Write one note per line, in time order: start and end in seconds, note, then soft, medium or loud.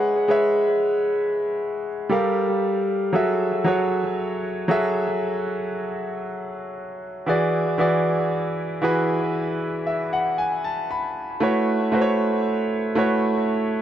0.00 0.28 G#3 medium
0.00 0.29 G#4 medium
0.00 0.30 B4 medium
0.00 0.30 C#5 medium
0.00 0.31 E5 medium
0.00 0.18 F#5 medium
0.28 1.87 G#3 medium
0.28 1.87 G#4 medium
0.28 1.88 B4 medium
0.28 1.88 C#5 medium
0.28 1.89 E5 medium
2.09 2.93 G3 medium
2.09 2.93 G4 medium
2.09 2.93 A4 medium
2.09 2.94 A#4 medium
2.09 2.94 F5 medium
3.13 3.53 F#3 medium
3.13 3.53 F#4 medium
3.13 3.54 G#4 medium
3.13 3.54 A4 medium
3.13 3.54 E5 medium
3.64 4.44 F#3 medium
3.64 4.45 F#4 medium
3.64 4.45 G#4 medium
3.64 4.45 A4 medium
3.64 4.46 C#5 medium
4.68 6.27 F#3 medium
4.68 6.27 F#4 medium
4.68 6.28 G#4 medium
4.68 6.28 A4 medium
4.68 6.28 E5 loud
7.26 7.67 E3 medium
7.26 7.67 E4 medium
7.26 7.67 F#4 medium
7.26 7.68 G#4 medium
7.26 7.68 D5 medium
7.78 8.58 E3 medium
7.78 8.58 E4 medium
7.78 8.59 F#4 medium
7.78 8.59 G#4 medium
7.78 8.59 D5 medium
8.82 10.41 E3 medium
8.82 10.41 E4 medium
8.82 10.41 F#4 medium
8.82 10.42 G#4 medium
8.82 10.42 B4 medium
9.87 10.11 E5 medium
10.13 10.37 F#5 medium
10.38 10.62 G#5 medium
10.64 10.88 A5 medium
10.91 11.38 B5 medium
11.40 11.81 A3 medium
11.40 11.81 E4 medium
11.40 11.81 F#4 medium
11.40 11.82 B4 medium
11.40 11.82 C#5 medium
11.92 12.72 A3 medium
11.92 12.72 E4 medium
11.92 12.72 F#4 medium
11.92 12.73 B4 medium
11.92 12.01 C5 medium
12.01 12.77 C#5 medium
12.95 13.82 A3 medium
12.95 13.82 E4 medium
12.95 13.82 F#4 medium
12.95 13.82 B4 medium
12.95 13.82 C#5 medium